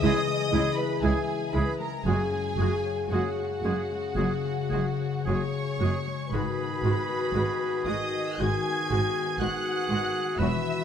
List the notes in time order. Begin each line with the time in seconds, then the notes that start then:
Already playing: C#3 E3 G#3 E4 G#4 C#5 G#5
0.01 C#2 G#3 C#4 E4 G#4 D#5 D#6
0.27 G#3
0.51 C#2 G#3 E4 G#4
0.75 B4 D#5 B5
1.02 C#2 G#3 E4 G#4 E5 G#5
1.28 G#4
1.52 C#2 G#3 E4 G#4 B4 B5
1.78 G#3 A#4 A#5
2.04 F#1 F#2 C#3 G#3 F#4 G#4 G#5
2.32 G#3
2.57 F#1 F#2 F#4 G#4
2.61 G#3 F#4
2.86 C#5
3.10 F#1 F#2 G#3 F#4 G#4 F#5
3.39 G#4
3.64 F#1 F#2 G#3 F#4 G#4
3.91 G#3
4.15 F#1 F#2 C#3 G#3 F#4 G#4
4.44 G#3
4.70 F#1 F#2 G#3 F#4 G#4
5.00 C#5
5.25 F#1 F#2 G#3 F#4 G#4 C#5 F#5 C#6
5.53 G#4
5.80 F#1 F#2 G#3 F#4 G#4
6.07 G#3
6.31 G#1 G#2 D#3 G#3 F#4 G#4 B4 B5
6.59 B3
6.83 G#1 G#2 G#3 F#4
7.09 B4
7.33 G#1 G#2 G#3 F#4 F#5
7.60 B4
7.86 G#1 G#2 G#3 F#4 D#5 D#6
8.13 B3
8.39 G#1 G#2 D#3 G#3 F#4 G#4 G#5 G#6
8.66 B3
8.90 G#1 G#2 G#3 F#4
9.15 B4
9.39 G#1 G#2 G#3 F#4 G#4 F#5 F#6
9.64 B4
9.89 G#1 G#2 G#3 F#4
10.14 B3
10.38 E1 E2 E3 F#3 F#4 B4 E5 E6
10.64 B3